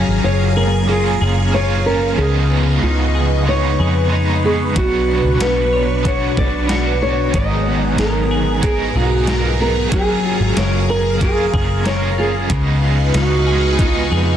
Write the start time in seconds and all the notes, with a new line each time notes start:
Already playing: F#3 A#3 C#4 F4 G#4 A#4 F5 G#5 A#5
0.08 G#1
0.24 F#1 F4 C#5
0.57 G#4 A#4
0.87 A#3 C#4 F4 G#4
0.91 F4 G#4
1.21 F#1 G#4
1.52 A#3 C#4 F4 C#5
1.56 F4 G#4
1.86 C#4 A#4
2.15 C#2 C#3 F3 G#4 B4 D#5
2.19 G#3 B3 D#4 C#6
2.24 G#4
2.50 B3
2.83 C#2 D#4 F4
3.15 G#4
3.45 G#3 B3 D#4 C#5
3.51 G#4
3.80 F2 G#4
4.09 G#3 B3 D#4
4.14 D#4 G#4
4.44 B3 G#4
4.73 B1 B2 F#3 D4, kick, closed hi-hat
4.77 B3 D4 F#4
4.82 C#5
5.09 D4
5.24 C#2
5.40 B1 F#4 B4, snare, closed hi-hat
5.73 C#5
6.03 B3 D4 F#4 C#5, kick, closed hi-hat
6.07 F#4
6.37 B1 D5, kick
6.67 B3 D4 F#4, snare, closed hi-hat
6.71 F#4
7.02 D4 C#5
7.31 G#1 G#2 D#3 B3, kick, closed hi-hat
7.35 F#3 B3 D#4 G#4 D#5 A#5
7.39 A#4
7.67 B3
7.85 C#5
7.98 G#1 A#4, snare, closed hi-hat
8.31 G#4
8.61 F#3 B3 D#4 G#4 A#4, kick, closed hi-hat
8.67 A#4
8.95 B1 F#4 G#4
9.25 F#3 B3 D#4 A#4, snare, closed hi-hat
9.31 A#4
9.43 F4
9.60 B3 A#4
9.89 F#1 F#3 A#3 F5, kick, closed hi-hat
9.94 C#4 F4 G#4
9.98 G#4
10.24 F4
10.40 G#1 F#4
10.56 F#1 A#4 C#5, snare, closed hi-hat
10.89 G#4 A#4
11.19 A#3 C#4 G#4 A#4, kick, closed hi-hat
11.23 F4 G#4
11.54 F#1 G#4, kick
11.84 A#3 C#4 A#4 C#5, snare, closed hi-hat
11.88 F4 G#4
12.18 F4 G#4
12.49 C#2 C#3 G#3 B3 D#4 B4 D#5 F5 C#6, kick, closed hi-hat
12.54 G#4
12.83 F4
13.14 C#2 D#4 F#4, snare, closed hi-hat
13.46 B3 D#4 G#4
13.51 G#3
13.78 G#3 B3 D#4, kick, closed hi-hat
13.82 D#4 F4 G#4
14.11 F2 G#4